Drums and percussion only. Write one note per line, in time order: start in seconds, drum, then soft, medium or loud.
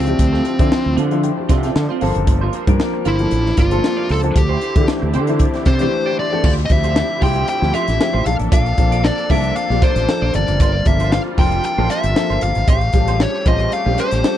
0.07 closed hi-hat medium
0.19 kick medium
0.19 closed hi-hat loud
0.34 snare soft
0.45 closed hi-hat medium
0.59 kick loud
0.59 closed hi-hat medium
0.72 snare loud
0.98 closed hi-hat medium
1.11 closed hi-hat soft
1.23 closed hi-hat medium
1.49 kick loud
1.49 snare soft
1.49 closed hi-hat medium
1.63 snare soft
1.63 closed hi-hat medium
1.76 snare loud
2.01 open hi-hat medium
2.15 closed hi-hat medium
2.27 kick loud
2.27 closed hi-hat medium
2.53 closed hi-hat medium
2.67 kick medium
2.67 closed hi-hat medium
2.80 snare loud
3.05 closed hi-hat medium
3.19 closed hi-hat soft
3.31 closed hi-hat medium
3.46 snare soft
3.57 kick medium
3.57 snare soft
3.57 closed hi-hat medium
3.71 closed hi-hat medium
3.84 snare loud
4.09 open hi-hat medium
4.23 closed hi-hat medium
4.36 kick loud
4.36 closed hi-hat loud
4.61 closed hi-hat medium
4.76 kick loud
4.76 closed hi-hat medium
4.88 snare loud
5.14 closed hi-hat medium
5.27 closed hi-hat medium
5.39 kick medium
5.39 closed hi-hat medium
5.54 snare soft
5.54 closed hi-hat soft
5.65 kick loud
5.65 snare soft
5.65 closed hi-hat medium
5.79 closed hi-hat medium
6.44 kick loud
6.44 crash loud
6.58 snare soft
6.58 closed hi-hat soft
6.69 kick medium
6.69 closed hi-hat medium
6.84 closed hi-hat medium
6.96 snare loud
7.22 kick medium
7.22 open hi-hat medium
7.36 closed hi-hat soft
7.48 closed hi-hat medium
7.63 snare soft
7.74 snare soft
7.74 closed hi-hat medium
7.88 snare soft
7.88 closed hi-hat medium
8.01 snare loud
8.26 closed hi-hat medium
8.40 closed hi-hat medium
8.52 kick loud
8.52 closed hi-hat loud
8.66 closed hi-hat soft
8.78 kick medium
8.78 closed hi-hat medium
8.92 closed hi-hat medium
9.05 snare loud
9.18 closed hi-hat soft
9.30 kick medium
9.30 open hi-hat medium
9.44 closed hi-hat soft
9.56 closed hi-hat medium
9.71 snare soft
9.82 kick loud
9.82 snare soft
9.82 closed hi-hat medium
9.96 snare soft
9.96 closed hi-hat medium
10.09 snare loud
10.34 closed hi-hat medium
10.48 closed hi-hat medium
10.60 kick loud
10.60 closed hi-hat medium
10.85 kick medium
10.85 closed hi-hat medium
11.00 closed hi-hat medium
11.12 snare loud
11.38 kick loud
11.38 open hi-hat medium
11.52 closed hi-hat medium
11.64 closed hi-hat medium
11.90 snare soft
11.90 closed hi-hat medium
12.03 closed hi-hat medium
12.16 snare loud
12.30 closed hi-hat soft
12.41 closed hi-hat medium
12.55 closed hi-hat medium
12.68 kick loud
12.68 closed hi-hat loud
12.81 closed hi-hat soft
12.93 kick medium
12.93 closed hi-hat medium
13.08 closed hi-hat medium
13.20 snare loud
13.46 kick medium
13.46 closed hi-hat medium
13.60 closed hi-hat soft
13.72 closed hi-hat medium
13.98 snare soft
13.98 closed hi-hat medium
14.11 snare soft
14.11 closed hi-hat medium
14.24 snare loud